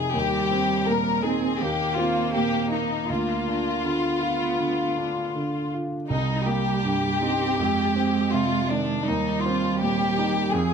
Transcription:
Already playing: F2 C3 C4 D#4 G#4
0.14 D#2 G3 G4
0.51 C4
0.87 A#2 A#4
1.23 C4 D#4 G#4
1.59 D#2 A#3 G4
1.95 C4 F4
2.32 A#2 G4
2.70 D#4
3.07 D2 A#3 F4
3.48 D4
3.84 D3 B3
4.21 F4
4.60 D3
4.97 D4
5.35 D3
5.74 F4
6.08 C2 G3 D#4
6.46 A#3 G4
6.84 G2
7.21 C4 D#4
7.59 F2 G#3
7.96 C4
8.33 C3 F4
8.70 D#3 D4
9.07 D#2 G3 D#4
9.43 C4 F4
9.81 A#2 G4
10.18 D#4
10.53 F2 F3 G#4

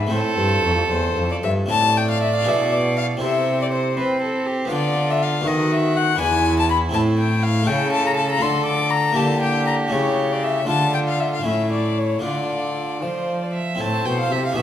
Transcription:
Already playing: E4
0.07 A2 A3 C4 E4 A4 C5
0.11 A2
0.37 G2
0.63 F2
0.91 E2 C5
1.17 F2
1.31 D5
1.43 G2 E5
1.66 A3 C4 E4
1.70 A2 D5 A5
1.97 G5
2.10 F5
2.22 E5
2.36 F5
2.42 D4 E4 G#4
2.47 B2 E5
2.72 D5
2.97 F5
3.17 C4 E4 A4 C5
3.22 C3 E5
3.62 D5
3.73 C5
3.97 C4 B4
4.22 A4
4.46 G4
4.65 B3 F4 B4
4.71 D3 F4 D5
5.11 E5
5.22 F5
5.41 B3 F#4 A4
5.45 D#3 F#4 D#5
5.72 E5
5.96 F#5
6.16 D4 E4 B4
6.20 E2 G#5
6.59 A5
6.70 B5
6.89 C4 E4 A4
6.94 A2 A5
7.18 G5
7.43 F5
7.63 A3 E4 A4
7.67 C#3 A4 G5
7.93 A5
8.06 A#5
8.17 A5
8.32 A#5
8.37 A3 F4 A4
8.42 D3 C6
8.66 D6
8.91 A#5
9.12 A#3 E4 G4 A5
9.16 D3 G4
9.43 G5
9.67 A#5
9.88 C#3 A3 E4 G4 C#5
9.92 C#3
10.32 D5
10.43 E5
10.65 D3 A3 D4 F4
10.69 D3 A5
10.94 G5
11.08 F5
11.20 E5
11.33 F5
11.42 A2 A3 C#4 E4
11.46 A2 E5
11.72 D5
11.98 C#5
12.19 A3 D4 F4
12.24 D3 F4 D5
13.02 F3 C5
13.43 D5
13.54 E5
13.75 C4 E4 A4
13.80 A2 C5 A5
14.05 B2 G5
14.20 F5
14.30 C3 E5
14.46 F5
14.52 B2 D4 E4 G#4
14.57 B2 G#4 E5

